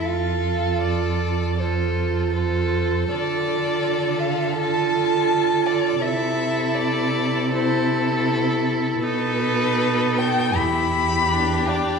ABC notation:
X:1
M:4/4
L:1/8
Q:1/4=80
K:Am
V:1 name="Violin"
f2 d2 c2 c2 | d3 f a3 d | e2 d2 c2 z2 | B3 g b3 d |]
V:2 name="Violin"
A4 A2 A2 | A4 A4 | A4 A4 | A4 G4 |]
V:3 name="Viola"
F4 F2 F2 | F4 F4 | E4 E4 | ^D4 E2 =D2 |]
V:4 name="Cello" clef=bass
F,,8 | D,8 | C,8 | B,,4 E,,4 |]